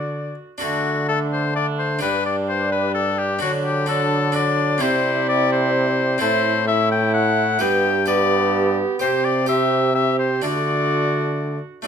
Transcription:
0.00 0.35 D3 soft
0.00 0.39 D3 medium
0.00 0.39 D4 medium
0.00 0.57 D4 soft
0.00 0.42 F#4 medium
0.00 0.57 F#4 soft
0.00 0.58 A4 soft
0.00 0.36 D5 medium
0.58 1.98 D3 medium
0.58 1.97 D4 medium
0.58 1.97 F#4 medium
0.58 1.05 F#4 loud
0.58 1.98 A4 medium
0.62 1.99 D3 medium
0.62 1.06 A3 medium
0.62 1.06 D4 medium
1.09 1.54 A3 medium
1.09 1.55 D4 medium
1.09 1.19 A4 loud
1.33 1.55 C5 medium
1.54 2.01 A3 medium
1.54 2.01 D4 medium
1.54 1.66 D5 loud
1.79 2.02 C5 medium
1.99 3.39 G3 medium
1.99 3.36 D4 medium
1.99 3.39 D4 medium
1.99 3.37 G4 medium
1.99 2.25 B4 loud
2.03 3.38 G2 medium
2.03 3.40 G2 medium
2.26 2.37 D5 medium
2.48 2.71 C5 loud
2.72 2.94 B4 medium
2.95 3.20 A4 loud
3.19 3.41 G4 medium
3.39 4.78 D3 medium
3.39 4.79 D3 medium
3.39 3.87 F#3 medium
3.39 3.85 D4 medium
3.39 3.88 D4 medium
3.39 3.86 F#4 medium
3.39 3.52 F#4 loud
3.65 3.88 G4 medium
3.86 4.34 F#3 medium
3.86 4.31 D4 medium
3.86 4.34 D4 medium
3.86 4.32 F#4 medium
3.86 4.34 A4 loud
4.32 4.83 F#3 medium
4.32 4.79 D4 medium
4.32 4.82 D4 medium
4.32 4.79 F#4 medium
4.32 4.83 D5 loud
4.78 6.18 C3 medium
4.78 6.20 G3 medium
4.78 6.16 C4 medium
4.78 6.17 E4 medium
4.78 6.21 E4 medium
4.78 6.17 G4 medium
4.78 5.28 C5 loud
4.82 6.19 C3 medium
5.29 5.51 D5 loud
5.52 6.21 C5 loud
6.18 7.58 A2 loud
6.18 7.58 A2 medium
6.18 6.65 A3 medium
6.18 7.56 C4 medium
6.18 7.56 E4 medium
6.18 6.65 E4 medium
6.18 7.57 A4 medium
6.18 6.67 C5 loud
6.67 7.63 A3 medium
6.67 7.63 E4 medium
6.67 6.91 E5 loud
6.92 7.13 G5 loud
7.14 7.62 F#5 loud
7.59 8.98 G2 medium
7.59 8.85 G2 loud
7.59 7.94 B3 medium
7.59 8.05 G4 medium
7.59 8.08 G4 medium
7.59 8.06 B4 medium
7.59 8.07 G5 loud
8.06 9.00 B3 medium
8.06 8.98 G4 medium
8.06 9.00 G4 medium
8.06 8.99 B4 medium
8.06 8.77 D5 loud
8.99 10.40 C3 loud
8.99 10.40 C3 medium
8.99 9.47 C4 medium
8.99 9.45 G4 medium
8.99 9.47 G4 medium
8.99 9.26 C5 loud
8.99 9.47 C5 medium
9.25 9.48 D5 loud
9.46 9.93 C4 medium
9.46 10.39 G4 medium
9.46 9.95 G4 medium
9.46 10.40 C5 medium
9.46 9.94 E5 loud
9.94 10.42 C4 medium
9.94 10.45 G4 medium
9.94 10.18 E5 loud
10.19 10.43 C5 medium
10.42 11.59 D3 medium
10.42 11.58 D3 medium
10.42 11.59 A3 medium
10.42 11.80 D4 medium
10.42 11.65 F#4 medium
10.42 11.81 A4 medium
10.42 11.59 D5 loud
11.82 11.87 A3 soft
11.82 11.87 D4 soft

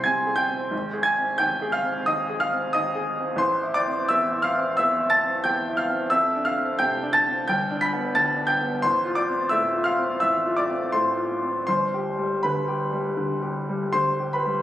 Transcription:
0.00 0.67 C2 soft
0.00 0.05 C3 soft
0.00 0.49 C4 soft
0.00 0.26 G#4 soft
0.00 0.74 F5 medium
0.00 0.37 G5 medium
0.00 0.05 G#5 medium
0.00 0.74 C6 medium
0.00 0.74 F6 medium
0.00 0.36 G6 medium
0.00 0.04 G#6 medium
0.00 0.38 G#6 medium
0.00 0.74 C7 medium
0.05 0.41 C3 soft
0.05 0.36 G#5 medium
0.26 0.63 G#4 soft
0.36 1.01 G5 medium
0.36 1.04 G6 medium
0.49 0.72 C4 soft
0.71 2.02 G#1 medium
0.93 1.30 G#4 soft
1.03 1.36 G#5 medium
1.03 1.38 G#6 medium
1.17 1.52 C4 soft
1.38 1.75 D#2 soft
1.38 1.70 G5 medium
1.38 1.72 G6 medium
1.62 1.97 G#4 medium
1.72 2.04 F5 medium
1.72 2.06 F6 medium
1.84 2.20 C4 soft
2.06 2.43 D#2 soft
2.06 2.38 D#5 medium
2.06 2.40 D#6 medium
2.30 2.65 G#4 soft
2.40 2.71 F5 medium
2.40 2.73 F6 medium
2.52 2.87 C4 soft
2.73 3.10 D#2 medium
2.73 3.37 D#5 medium
2.73 3.40 D#6 medium
2.95 3.31 G#4 soft
3.19 3.41 C4 soft
3.36 4.70 A1 medium
3.36 3.71 C5 medium
3.36 3.73 C6 medium
3.63 3.99 E4 medium
3.74 4.06 D5 medium
3.74 4.08 D6 medium
3.87 4.22 C4 medium
4.09 4.45 E2 medium
4.09 4.40 E5 medium
4.09 4.42 E6 medium
4.32 4.68 E4 medium
4.42 4.75 F5 medium
4.42 4.76 F6 loud
4.56 4.91 C4 medium
4.77 5.13 E2 medium
4.77 5.09 E5 medium
4.77 5.10 E6 medium
5.00 5.35 E4 medium
5.10 5.41 A5 medium
5.10 5.43 A6 loud
5.24 5.58 C4 medium
5.44 5.80 E2 soft
5.44 5.75 G5 medium
5.44 5.77 G6 loud
5.69 6.03 E4 soft
5.77 6.09 F5 medium
5.77 6.11 F6 medium
5.89 6.11 C4 medium
6.10 7.43 F2 medium
6.10 6.43 E5 medium
6.10 6.44 E6 loud
6.36 6.71 D4 medium
6.45 6.77 F5 medium
6.45 6.79 F6 loud
6.58 6.93 C4 medium
6.79 7.15 C3 soft
6.79 7.10 G5 medium
6.79 7.12 G6 loud
7.03 7.38 D4 medium
7.13 7.45 A5 medium
7.13 7.46 A6 loud
7.26 7.47 C4 medium
7.48 8.79 G1 medium
7.48 7.79 G5 medium
7.48 7.80 G6 loud
7.71 8.05 D4 medium
7.81 8.12 B5 medium
7.81 8.14 B6 loud
7.93 8.28 B3 medium
8.15 8.51 D2 medium
8.15 8.46 A5 medium
8.15 8.48 A6 loud
8.36 8.73 D4 medium
8.47 8.80 G5 medium
8.47 8.82 G6 medium
8.61 8.83 B3 soft
8.82 10.17 A1 medium
8.82 9.15 C5 medium
8.82 9.17 C6 loud
9.05 9.41 F4 medium
9.15 9.48 D5 medium
9.15 9.50 D6 medium
9.28 9.64 C4 soft
9.49 9.87 A2 medium
9.49 9.82 E5 medium
9.49 9.84 E6 medium
9.72 10.10 F4 medium
9.84 10.18 F5 medium
9.84 10.20 F6 medium
9.97 10.35 C4 medium
10.20 11.65 A1 medium
10.20 10.54 E5 medium
10.20 10.56 E6 medium
10.46 10.84 F4 soft
10.57 10.91 D5 medium
10.57 10.93 D6 medium
10.69 11.07 C4 soft
10.92 11.33 A2 soft
10.92 11.64 C5 medium
10.92 11.65 C6 medium
11.17 11.57 F4 soft
11.43 11.68 C4 soft
11.67 13.13 G1 medium
11.67 12.39 C5 medium
11.67 12.42 C6 medium
11.94 12.33 G4 soft
12.18 12.58 G3 soft
12.43 12.83 D2 soft
12.43 14.27 B4 soft
12.43 14.31 B5 medium
12.68 13.07 G4 soft
12.92 13.32 G3 soft
13.17 13.57 D2 soft
13.42 13.83 G4 soft
13.69 14.09 G3 soft
13.93 14.34 D2 soft
13.93 14.28 C5 medium
13.93 14.31 C6 medium
14.20 14.59 G4 soft
14.33 14.62 B4 soft
14.33 14.62 B5 medium
14.46 14.62 G3 soft

